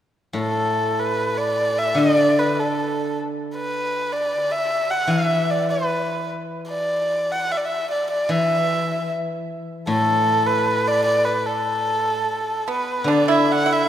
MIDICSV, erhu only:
0, 0, Header, 1, 2, 480
1, 0, Start_track
1, 0, Tempo, 811908
1, 209, Time_signature, 2, 2, 24, 8
1, 1168, Tempo, 781250
1, 3088, Tempo, 803213
1, 5488, Tempo, 778210
1, 6928, Tempo, 806452
1, 8377, End_track
2, 0, Start_track
2, 0, Title_t, "Erhu"
2, 0, Program_c, 0, 110
2, 226, Note_on_c, 0, 69, 63
2, 587, Note_on_c, 0, 71, 67
2, 596, Note_off_c, 0, 69, 0
2, 812, Note_on_c, 0, 74, 73
2, 821, Note_off_c, 0, 71, 0
2, 1056, Note_on_c, 0, 76, 78
2, 1065, Note_off_c, 0, 74, 0
2, 1175, Note_on_c, 0, 74, 88
2, 1184, Note_off_c, 0, 76, 0
2, 1425, Note_on_c, 0, 71, 73
2, 1434, Note_off_c, 0, 74, 0
2, 1548, Note_on_c, 0, 69, 62
2, 1558, Note_off_c, 0, 71, 0
2, 1902, Note_off_c, 0, 69, 0
2, 2142, Note_on_c, 0, 71, 65
2, 2488, Note_on_c, 0, 74, 71
2, 2497, Note_off_c, 0, 71, 0
2, 2729, Note_on_c, 0, 76, 80
2, 2738, Note_off_c, 0, 74, 0
2, 2968, Note_on_c, 0, 78, 78
2, 2977, Note_off_c, 0, 76, 0
2, 3093, Note_on_c, 0, 76, 77
2, 3102, Note_off_c, 0, 78, 0
2, 3329, Note_on_c, 0, 74, 73
2, 3338, Note_off_c, 0, 76, 0
2, 3443, Note_off_c, 0, 74, 0
2, 3446, Note_on_c, 0, 71, 61
2, 3786, Note_off_c, 0, 71, 0
2, 4036, Note_on_c, 0, 74, 71
2, 4410, Note_on_c, 0, 78, 76
2, 4419, Note_off_c, 0, 74, 0
2, 4534, Note_on_c, 0, 76, 72
2, 4542, Note_off_c, 0, 78, 0
2, 4564, Note_on_c, 0, 74, 57
2, 4573, Note_off_c, 0, 76, 0
2, 4614, Note_on_c, 0, 76, 73
2, 4622, Note_off_c, 0, 74, 0
2, 4765, Note_off_c, 0, 76, 0
2, 4769, Note_on_c, 0, 74, 64
2, 4881, Note_off_c, 0, 74, 0
2, 4885, Note_on_c, 0, 74, 71
2, 5004, Note_on_c, 0, 76, 76
2, 5013, Note_off_c, 0, 74, 0
2, 5485, Note_off_c, 0, 76, 0
2, 5961, Note_on_c, 0, 69, 84
2, 6320, Note_on_c, 0, 71, 77
2, 6329, Note_off_c, 0, 69, 0
2, 6572, Note_on_c, 0, 74, 90
2, 6581, Note_off_c, 0, 71, 0
2, 6681, Note_off_c, 0, 74, 0
2, 6685, Note_on_c, 0, 74, 82
2, 6802, Note_on_c, 0, 71, 74
2, 6812, Note_off_c, 0, 74, 0
2, 6936, Note_on_c, 0, 69, 71
2, 6945, Note_off_c, 0, 71, 0
2, 7654, Note_off_c, 0, 69, 0
2, 7678, Note_on_c, 0, 71, 63
2, 7915, Note_on_c, 0, 74, 75
2, 7924, Note_off_c, 0, 71, 0
2, 8037, Note_on_c, 0, 76, 68
2, 8046, Note_off_c, 0, 74, 0
2, 8159, Note_on_c, 0, 78, 81
2, 8168, Note_off_c, 0, 76, 0
2, 8281, Note_on_c, 0, 76, 74
2, 8290, Note_off_c, 0, 78, 0
2, 8377, Note_off_c, 0, 76, 0
2, 8377, End_track
0, 0, End_of_file